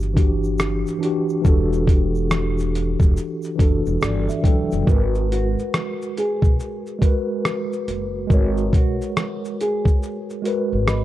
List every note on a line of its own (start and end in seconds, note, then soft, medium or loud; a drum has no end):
0.00 0.82 G1 medium
0.00 0.15 D4 medium
0.00 0.17 F#4 medium
0.00 0.19 G4 loud
0.00 shaker soft
0.02 shaker soft
0.13 0.96 E3 medium
0.13 0.97 D4 medium
0.13 0.98 F#4 medium
0.13 kick medium
0.17 0.99 G4 medium
0.17 closed hi-hat medium
0.17 shaker soft
0.44 shaker medium
0.58 cross-stick loud
0.58 shaker medium
0.60 shaker medium
0.86 shaker soft
0.86 shaker medium
0.99 1.40 E3 medium
0.99 1.42 D4 medium
1.03 1.43 F#4 medium
1.03 1.44 G4 medium
1.03 closed hi-hat medium
1.03 shaker soft
1.29 shaker medium
1.42 2.97 E1 loud
1.42 3.06 E3 medium
1.42 3.07 D4 medium
1.42 kick loud
1.42 shaker medium
1.46 3.08 F#4 medium
1.46 3.09 A4 loud
1.46 shaker medium
1.73 shaker soft
1.87 kick medium
1.87 closed hi-hat medium
1.87 shaker soft
2.15 shaker soft
2.31 cross-stick loud
2.31 shaker medium
2.58 shaker medium
2.60 shaker medium
2.75 closed hi-hat medium
2.75 shaker soft
3.00 3.14 E1 medium
3.00 kick medium
3.00 shaker soft
3.02 shaker soft
3.17 shaker medium
3.42 shaker medium
3.44 shaker soft
3.56 3.84 F#1 medium
3.56 4.39 E3 medium
3.56 4.40 D4 medium
3.56 kick medium
3.60 4.41 F#4 medium
3.60 4.42 A4 medium
3.60 closed hi-hat medium
3.60 shaker soft
3.86 4.01 E1 medium
3.86 shaker medium
4.01 4.27 G1 medium
4.01 4.27 D5 medium
4.01 cross-stick loud
4.01 shaker medium
4.03 shaker medium
4.29 4.44 E5 medium
4.29 shaker soft
4.29 shaker medium
4.42 4.69 E1 medium
4.42 4.84 E3 medium
4.42 4.85 D4 medium
4.42 4.84 G5 medium
4.42 kick medium
4.42 closed hi-hat medium
4.42 shaker soft
4.46 4.86 F#3 medium
4.46 4.87 A4 loud
4.71 4.86 F#1 medium
4.71 shaker soft
4.84 5.54 G#1 loud
4.84 6.49 G#3 medium
4.84 6.50 F#4 medium
4.84 kick loud
4.88 6.51 A#4 medium
4.88 6.52 B4 medium
4.88 shaker medium
5.15 shaker soft
5.32 6.13 F#4 medium
5.32 closed hi-hat medium
5.32 shaker soft
5.59 shaker soft
5.74 cross-stick loud
5.74 shaker medium
6.02 shaker soft
6.18 6.83 G#4 medium
6.18 closed hi-hat medium
6.18 shaker soft
6.42 6.57 B1 medium
6.42 kick medium
6.42 shaker soft
6.60 shaker medium
6.87 shaker soft
6.99 8.22 G#3 medium
6.99 8.24 F#4 medium
6.99 8.24 A#4 medium
6.99 kick medium
6.99 closed hi-hat medium
6.99 shaker soft
7.05 8.25 B4 loud
7.45 cross-stick loud
7.45 shaker medium
7.73 shaker soft
7.88 8.27 F#1 medium
7.88 closed hi-hat medium
7.88 shaker soft
8.27 8.69 G#1 loud
8.27 9.92 G#3 medium
8.27 9.93 F#4 medium
8.27 kick loud
8.27 shaker medium
8.32 9.94 A#4 medium
8.32 9.95 C#5 loud
8.57 shaker soft
8.73 8.98 B1 medium
8.73 9.56 F#4 medium
8.73 kick medium
8.73 closed hi-hat medium
8.73 shaker medium
9.02 shaker medium
9.17 cross-stick loud
9.17 shaker medium
9.45 shaker medium
9.61 10.26 G#4 medium
9.61 closed hi-hat medium
9.61 shaker medium
9.85 kick medium
9.85 shaker soft
10.03 shaker medium
10.30 shaker soft
10.42 11.04 G#3 medium
10.42 10.87 F#4 medium
10.42 closed hi-hat medium
10.42 shaker soft
10.46 10.88 A#4 medium
10.46 10.89 B4 loud
10.73 11.04 G#1 medium
10.88 11.04 D#5 soft
10.88 11.04 B5 medium
10.88 cross-stick loud
10.88 shaker medium